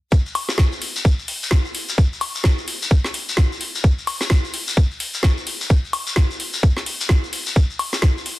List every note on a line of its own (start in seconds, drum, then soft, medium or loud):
0.12 kick loud
0.12 shekere medium
0.26 shekere soft
0.35 open hi-hat loud
0.35 high woodblock medium
0.49 snare soft
0.49 shekere medium
0.58 kick loud
0.58 snare loud
0.58 shekere medium
0.72 shekere soft
0.82 open hi-hat medium
0.96 shekere medium
1.05 kick loud
1.05 shekere medium
1.19 shekere soft
1.28 open hi-hat loud
1.43 shekere medium
1.51 kick loud
1.51 snare loud
1.51 shekere medium
1.65 shekere soft
1.75 open hi-hat medium
1.89 shekere medium
1.98 kick loud
1.98 shekere medium
2.13 shekere soft
2.21 open hi-hat loud
2.21 high woodblock medium
2.35 shekere medium
2.44 kick loud
2.44 snare loud
2.44 shekere medium
2.58 shekere soft
2.68 open hi-hat medium
2.82 shekere medium
2.91 kick loud
2.91 shekere medium
3.04 snare soft
3.04 shekere soft
3.14 open hi-hat loud
3.29 shekere medium
3.37 kick loud
3.37 snare loud
3.52 shekere soft
3.61 open hi-hat loud
3.75 shekere medium
3.84 kick loud
3.84 shekere medium
3.98 shekere soft
4.07 open hi-hat loud
4.07 high woodblock medium
4.21 snare soft
4.21 shekere medium
4.30 kick loud
4.30 snare loud
4.30 shekere medium
4.44 shekere soft
4.54 open hi-hat loud
4.68 shekere medium
4.77 kick loud
4.77 shekere medium
4.91 shekere soft
5.00 open hi-hat loud
5.14 shekere medium
5.23 kick loud
5.23 snare loud
5.23 shekere medium
5.38 shekere soft
5.47 open hi-hat loud
5.61 shekere medium
5.70 kick loud
5.70 shekere medium
5.85 shekere soft
5.93 open hi-hat loud
5.93 high woodblock medium
6.07 shekere medium
6.16 kick loud
6.16 snare loud
6.31 shekere soft
6.40 open hi-hat medium
6.53 shekere medium
6.63 kick loud
6.63 shekere medium
6.77 snare soft
6.77 shekere soft
6.86 open hi-hat loud
7.01 shekere medium
7.09 kick loud
7.09 snare loud
7.24 shekere soft
7.33 open hi-hat loud
7.46 shekere medium
7.56 kick loud
7.56 shekere medium
7.70 shekere soft
7.79 open hi-hat loud
7.79 high woodblock medium
7.93 snare soft
7.93 shekere medium
8.02 kick loud
8.02 snare loud
8.17 shekere soft
8.26 open hi-hat medium